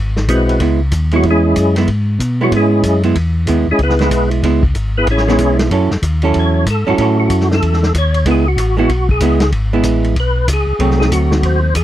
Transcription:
Already playing: tonewheel organ G#1
0.16 snare
0.28 tonewheel organ B1 G#3 C4 E4 F#4 B4, kick, hi-hat pedal, ride
0.49 ride
0.60 tonewheel organ C#2, hollow-body jazz guitar G#3 B3 E4, kick, ride
0.92 tonewheel organ D#2, kick, hi-hat pedal, ride
1.11 hollow-body jazz guitar G#3 B3 E4, ride
1.16 tonewheel organ F#3 F#4
1.23 tonewheel organ E2, kick, ride
1.31 tonewheel organ G#3 C#4 E4 G#4
1.56 tonewheel organ F#2, kick, hi-hat pedal, ride
1.76 hollow-body jazz guitar G#3 B3 E4, snare, ride
1.87 tonewheel organ G#2, kick, ride
2.19 tonewheel organ B2, kick, hi-hat pedal, ride
2.41 tonewheel organ F#3 F#4, hollow-body jazz guitar G#3 B3 E4
2.51 tonewheel organ G#2, kick, ride
2.56 tonewheel organ G#3 C#4 E4 G#4
2.83 tonewheel organ F#2, kick, hi-hat pedal, ride
3.03 hollow-body jazz guitar G#3 B3 E4, ride
3.15 tonewheel organ E2, kick, ride
3.47 tonewheel organ D#2, hollow-body jazz guitar G#3 B3 E4, kick, hi-hat pedal, ride
3.67 tonewheel organ D#2
3.71 tonewheel organ G#3 C#4 E4 G#4
3.78 tonewheel organ C#2, kick, ride
3.83 tonewheel organ B3 E4 G#4 B4
3.90 snare
3.99 hollow-body jazz guitar G#3 B3 E4, snare, ride
4.10 tonewheel organ B1, kick, hi-hat pedal, ride
4.31 ride
4.43 tonewheel organ C#2, hollow-body jazz guitar G#3 B3 E4, kick, ride
4.63 kick
4.75 tonewheel organ G#1, kick, hi-hat pedal, ride
4.97 tonewheel organ B3 E4 G#4 B4
5.07 tonewheel organ A1 E4, kick, ride
5.11 tonewheel organ C#4 G#4 C#5
5.18 snare
5.28 hollow-body jazz guitar G#3 B3 E4, snare
5.38 tonewheel organ B1, kick, hi-hat pedal, ride
5.59 snare, ride
5.70 tonewheel organ F#2, hollow-body jazz guitar F#3 C#4 E4 A4, kick, ride
5.91 tonewheel organ F#2, snare
6.02 tonewheel organ D#2, kick, hi-hat pedal, ride
6.22 hollow-body jazz guitar F#3 C#4 E4 A4, ride
6.34 tonewheel organ E2, kick, ride
6.39 tonewheel organ C#5
6.66 tonewheel organ G#2, kick, hi-hat pedal, ride
6.70 tonewheel organ A4
6.87 tonewheel organ G#2 F#4, hollow-body jazz guitar F#3 C#4 E4 A4
6.98 tonewheel organ A2, hollow-body jazz guitar F#3 C#4 E4 A4, kick, ride
7.20 tonewheel organ F#4
7.30 tonewheel organ F#2, kick, hi-hat pedal, ride
7.40 snare
7.51 tonewheel organ A4, snare
7.61 tonewheel organ E2, kick, ride
7.73 snare
7.83 snare
7.94 tonewheel organ D#2, kick, hi-hat pedal, ride
7.98 tonewheel organ C#5
8.14 ride
8.25 tonewheel organ C#2, hollow-body jazz guitar G#3 B3 E4, kick, ride
8.31 tonewheel organ G#4
8.48 tonewheel organ F#4
8.57 tonewheel organ A1, kick, hi-hat pedal, ride
8.77 hollow-body jazz guitar G#3 B3 E4, tonewheel organ F#4
8.89 tonewheel organ B1, kick, ride
9.09 tonewheel organ G#4, kick
9.20 tonewheel organ C#2, hollow-body jazz guitar G#3 B3 E4, kick, hi-hat pedal, ride
9.40 snare, ride
9.52 tonewheel organ G#1, kick, ride
9.73 hollow-body jazz guitar G#3 B3 E4
9.83 tonewheel organ A1, kick, hi-hat pedal, ride
10.04 ride
10.15 tonewheel organ B1, kick, ride
10.20 tonewheel organ B4
10.48 tonewheel organ C#2, kick, hi-hat pedal, ride
10.53 tonewheel organ G#4
10.67 tonewheel organ C#2
10.79 tonewheel organ C2, hollow-body jazz guitar F#3 A3 C4, kick, ride
10.91 snare
11.00 tonewheel organ G#4, snare
11.11 tonewheel organ D2 F#4, kick, hi-hat pedal, ride
11.31 snare
11.42 tonewheel organ D#2 C5, kick, ride
11.74 tonewheel organ E2 G#4, kick, hi-hat pedal, ride

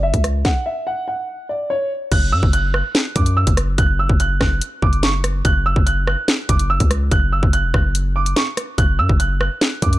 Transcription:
Already playing: 808-style bass F#1
0.03 grand piano E5
0.14 808-style bass C#2, kick, closed hi-hat
0.24 cross-stick, closed hi-hat
0.45 grand piano F#5, kick, snare
0.66 grand piano E5
0.87 grand piano F#5
1.08 grand piano F#5
1.49 grand piano D5
1.70 grand piano C#5
2.12 808-style bass F#1, grand piano F#6, kick, closed hi-hat, crash
2.32 808-style bass F#2, grand piano E6
2.43 808-style bass F#1, kick
2.53 grand piano F#6, closed hi-hat
2.74 grand piano F#6, cross-stick
2.95 snare
3.16 808-style bass F#2, grand piano D6, kick, closed hi-hat
3.26 closed hi-hat
3.37 grand piano E6
3.47 808-style bass F#1, kick, closed hi-hat
3.57 cross-stick, closed hi-hat
3.78 808-style bass F#1, grand piano F#6, kick, closed hi-hat
3.99 grand piano E6
4.09 808-style bass F#1, kick
4.20 grand piano F#6, closed hi-hat
4.41 808-style bass F#1, grand piano F#6, kick, cross-stick, snare
4.61 closed hi-hat
4.82 808-style bass F#1, grand piano D6, kick
4.93 closed hi-hat
5.03 grand piano C#6, snare, closed hi-hat
5.24 cross-stick, closed hi-hat
5.45 808-style bass F#1, grand piano F#6, kick, closed hi-hat
5.66 grand piano E6
5.76 808-style bass F#1, kick
5.86 grand piano F#6, closed hi-hat
6.07 grand piano F#6, cross-stick
6.28 snare
6.49 808-style bass F#1, grand piano D6, kick, closed hi-hat
6.59 closed hi-hat
6.70 grand piano E6
6.80 808-style bass C#2, kick, closed hi-hat
6.91 cross-stick, closed hi-hat
7.12 808-style bass F#1, grand piano F#6, kick, closed hi-hat
7.32 grand piano E6
7.43 808-style bass F#1, kick
7.53 grand piano F#6, closed hi-hat
7.64 808-style bass E1
7.74 808-style bass F#1, grand piano F#6, kick, cross-stick
7.95 closed hi-hat
8.16 grand piano D6
8.26 closed hi-hat
8.36 grand piano C#6, snare, closed hi-hat
8.57 cross-stick, closed hi-hat
8.78 808-style bass F#1, grand piano F#6, kick, closed hi-hat
8.99 808-style bass F#2, grand piano E6
9.09 808-style bass F#1, kick
9.20 grand piano F#6, closed hi-hat
9.41 grand piano F#6, cross-stick
9.61 snare
9.82 808-style bass F#2, grand piano D6, kick, closed hi-hat
9.93 closed hi-hat

